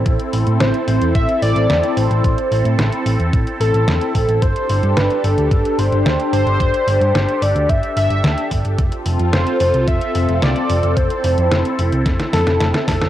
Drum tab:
HH |xxoxxxoxxxoxxxox|xxoxxxoxxxoxxxox|xxoxxxoxxxoxxxox|xxoxxxoxxxoxxxox|
SD |----o-------o---|----o-------o---|----o-------o---|----o-------o---|
BD |o-------o-------|o-------o-----o-|o-------o-------|o-------o-----o-|

HH |xxoxxxoxxxoxxxox|xxoxxxoxxxoxxxox|
SD |----o-------o---|----o---oooooooo|
BD |o-------o-------|o-------o-----o-|